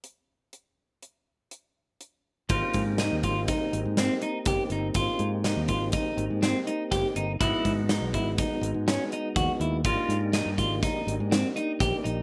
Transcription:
<<
  \new Staff \with { instrumentName = "Clean electric guitar" } { \time 5/4 \key aes \lydian \tempo 4 = 122 r1 r4 | f'4 ees'8 f'8 ees'4 c'8 ees'8 g'8 ees'8 | f'4 ees'8 f'8 ees'4 c'8 ees'8 g'8 ees'8 | e'4 dis'8 e'8 dis'4 des'8 dis'8 ges'8 e'8 |
f'4 ees'8 f'8 ees'4 c'8 ees'8 g'8 ees'8 | }
  \new Staff \with { instrumentName = "Tonewheel organ" } { \time 5/4 \key aes \lydian r1 r4 | <bes c' ees' g'>1~ <bes c' ees' g'>4~ | <bes c' ees' g'>1~ <bes c' ees' g'>4 | <gis b dis' ges'>1~ <gis b dis' ges'>4 |
<bes d' ees' g'>1~ <bes d' ees' g'>4 | }
  \new Staff \with { instrumentName = "Fingered electric bass" } { \clef bass \time 5/4 \key aes \lydian r1 r4 | aes,,16 r16 aes,8. ees,16 aes,,8 r8 aes,,16 aes,8 r8. g,,16 r16 g,,8 | aes,,16 r16 aes,8. ees,16 aes,,8 r8 aes,,16 aes,8 r8. g,,16 r16 g,,8 | gis,,16 r16 gis,8. b,,16 gis,,8 r8 gis,,16 gis,8 r8. dis,16 r16 dis,8 |
aes,,16 r16 aes,8. g,16 aes,,8 r8 aes,,16 aes,8 r8. bes,,16 r16 bes,,8 | }
  \new DrumStaff \with { instrumentName = "Drums" } \drummode { \time 5/4 hh4 hh4 hh4 hh4 hh4 | <hh bd>8 <hh bd>8 <hh sn>8 <hh bd>8 <hh bd>8 hh8 <hh sn>8 hh8 <hh bd>8 hh8 | <hh bd>8 hh8 <hh sn>8 <hh bd>8 <hh bd>8 hh8 <hh sn>8 hh8 <hh bd sn>8 hh8 | <hh bd>8 <hh bd>8 <hh sn>8 <hh bd>8 <hh bd>8 hh8 <hh sn>8 hh8 <hh bd>8 hh8 |
<hh bd>8 <hh sn>8 <hh sn>8 <hh bd>8 <hh bd>8 hh8 <hh sn>8 hh8 <hh bd>8 hh8 | }
>>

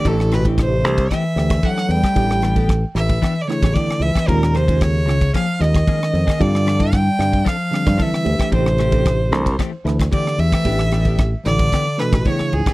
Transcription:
<<
  \new Staff \with { instrumentName = "Violin" } { \time 4/4 \key d \dorian \tempo 4 = 113 a'8 b'8 c''4 e''4 fis''8 g''8~ | g''4 r8 e''8.~ e''32 d''32 cis''8 d''8 e''8 | bes'8 c''8 des''4 f''8 ees''4. | d''4 g''4 f''4 e''4 |
c''2 r4 d''8 e''8~ | e''4 r8 d''4 b'8 cis''8 aes'8 | }
  \new Staff \with { instrumentName = "Clean electric guitar" } { \time 4/4 \key d \dorian <e a c' g'>16 r16 <e a c' g'>16 <a c' g'>16 r4 <e a c' g'>16 r8. <e a c' g'>16 r8 <a c' g'>16 | <e b d' g'>16 r16 <e b d' g'>16 <b d' g'>16 r4 <e b d' g'>16 r8. <e b d' g'>16 r8 <b d' g'>16 | <f bes des' aes'>16 r16 <f bes des' aes'>16 <bes des' aes'>16 r4 <f bes des' aes'>16 r8. <f bes des' aes'>16 r8 <bes des' aes'>16 | <f c' d' a'>16 r16 <f c' d' a'>16 <c' d' a'>16 r4 <f c' d' a'>16 r8. <f c' d' a'>16 r8 <a c' g'>16 |
<e a c' g'>16 r16 <e a c' g'>16 <a c' g'>16 r4 <e a c' g'>16 r8. <e a c' g'>16 r8 <a c' g'>16 | <e b d' g'>16 r16 <e b d' g'>16 <b d' g'>16 r4 <e b d' g'>16 r8. <e b d' g'>16 r8 <b d' g'>16 | }
  \new Staff \with { instrumentName = "Tine electric piano" } { \time 4/4 \key d \dorian <e a d' g'>8 r16 <e a d' e'>8 r16 <e a d' a'>16 <d' e'>16 r8 <e a d' g'>16 r16 <e a d' a'>8. r16 | <e a d' g'>8 r16 <e a d' a'>8 r16 <e a d' a'>16 <d' g'>16 r8 <e a d' e'>16 r16 <e a d' e'>8. r16 | <ees aes des' f'>8 r16 <ees aes des' f'>8 r16 <ees aes des' f'>16 des'16 r8 <ees aes des' f'>16 r16 <ees aes des' ees'>8. r16 | <d g c' f'>8 r16 <d g c' e'>8 r16 <d g c' g'>16 r8. <d g c' d'>16 r16 <d g c' e'>8 <e a d' g'>8~ |
<e a d' g'>8 r16 <e a d' a'>8 r16 <e a d' a'>16 r8. <e a d' e'>16 r16 <e a d' g'>8. r16 | <e a d' g'>8 r16 <e a d' g'>8 r16 <e a d' e'>16 r8. <e a d' a'>16 r16 <e a d' e'>8. r16 | }
  \new Staff \with { instrumentName = "Bass clarinet" } { \clef bass \time 4/4 \key d \dorian a,8 b,8 c4 e4 fis8 g8~ | g4 r8 e8.~ e32 d32 cis8 d8 e8 | bes,8 c8 des4 f8 ees4. | d4 g4 f4 e4 |
c2 r4 d8 e8~ | e4 r8 d4 b,8 cis8 aes,8 | }
  \new Staff \with { instrumentName = "Fingered electric bass" } { \clef bass \time 4/4 \key d \dorian a,,4. c,8 r8 d,8 r8 e,16 r16 | a,,4. a,,8 r8. a,,16 r8 cis,16 r16 | ees,4. des,8 r8 ees,8 r8 f,16 r16 | g,4. g,8 r8. g,16 r8 d,16 r16 |
a,,4. c,8 r8 d,8 r8 e,16 r16 | a,,4. a,,8 r8. a,,16 r8 cis,16 r16 | }
  \new DrumStaff \with { instrumentName = "Drums" } \drummode { \time 4/4 <bd cymr>16 ss16 <cymr ss>16 <bd cymr>16 <bd cymr ss>8 <cymr ss>16 <bd cymr>16 <bd cymr ss>8 <cymr ss>16 <bd cymr ss>16 <bd cymr>16 ss16 cymr16 <bd cymr ss>16 | <bd cymr>16 ss16 <cymr ss>16 <bd cymr>16 <bd cymr ss>8 <cymr ss>16 <bd cymr>16 <bd cymr ss>8 <cymr ss>16 <bd cymr ss>16 <bd cymr>16 ss16 cymr16 <bd cymr ss>16 | <bd cymr>16 ss16 <cymr ss>16 <bd cymr>16 <bd cymr ss>8 <cymr ss>16 <bd cymr>16 <bd cymr ss>8 <cymr ss>16 <bd cymr ss>16 <bd cymr>16 ss16 cymr16 <bd cymr ss>16 | <bd cymr>16 ss16 <cymr ss>16 <bd cymr>16 <bd cymr ss>8 <cymr ss>16 <bd cymr>16 <bd cymr ss>8 <cymr ss>16 <bd cymr ss>16 <bd cymr>16 ss16 cymr16 <bd cymr ss>16 |
<bd cymr>16 ss16 <cymr ss>16 <bd cymr>16 <bd cymr ss>8 <cymr ss>16 <bd cymr>16 <bd cymr ss>8 <cymr ss>16 <bd cymr ss>16 <bd cymr>16 ss16 cymr16 <bd cymr ss>16 | <bd cymr>16 ss16 <cymr ss>16 <bd cymr>16 <bd cymr ss>8 <cymr ss>16 <bd cymr>16 <bd cymr ss>8 <cymr ss>16 <bd cymr ss>16 <bd cymr>16 ss16 cymr16 <bd cymr ss>16 | }
>>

